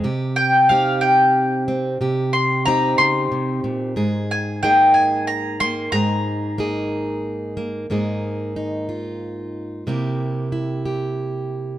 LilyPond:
<<
  \new Staff \with { instrumentName = "Mandolin" } { \time 6/8 \key aes \major \tempo 4. = 61 r8 g''8 f''8 g''4 r8 | r8 c'''8 bes''8 c'''4 r8 | r8 aes''8 g''8 aes''8 bes''8 c'''8 | bes''2~ bes''8 r8 |
r2. | r2. | }
  \new Staff \with { instrumentName = "Steel-string acoustic guitar" } { \time 6/8 \key aes \major << { <c' g'>4 <c' ees' g'>4. c'8 | g'4 <c' ees' g'>2 | aes'4 <bes ees' aes'>4. bes8 | aes'4 <bes ees' aes'>4. bes8 |
<bes ees' aes'>4 ees'8 f'4. | <bes e' g'>4 e'8 g'4. | } \\ { c2. | c4. des8 c8 bes,8 | aes,2. | aes,2. |
aes,2. | c2. | } >> }
>>